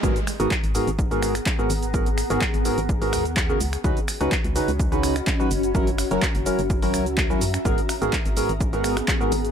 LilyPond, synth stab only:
\new Staff \with { instrumentName = "Synth stab" } { \time 4/4 \key gis \minor \tempo 4 = 126 <gis, b fis' gis' ais'>16 r8 <gis, b fis' gis' ais'>16 r8 <gis, b fis' gis' ais'>16 r8 <gis, b fis' gis' ais'>8 r8 <gis, b fis' gis' ais'>16 r8 | <gis, b fis' gis' ais'>16 r8 <gis, b fis' gis' ais'>16 r8 <gis, b fis' gis' ais'>16 r8 <gis, b fis' gis' ais'>8 r8 <cis b fis' gis' ais'>16 r8 | <cis cis' dis' fis' b'>16 r8 <cis cis' dis' fis' b'>16 r8 <cis cis' dis' fis' b'>16 r8 <cis cis' dis' fis' b'>8 r8 <fis cis' dis' fis' b'>16 r8 | <fis cis' e' fis' ais'>16 r8 <fis cis' e' fis' ais'>16 r8 <fis cis' e' fis' ais'>16 r8 <fis cis' e' fis' ais'>8 r8 <fis cis' e' fis' ais'>16 r8 |
<gis, b fis' gis' ais'>16 r8 <gis, b fis' gis' ais'>16 r8 <gis, b fis' gis' ais'>16 r8 <gis, b fis' gis' ais'>8 r8 <gis, b fis' gis' ais'>16 r8 | }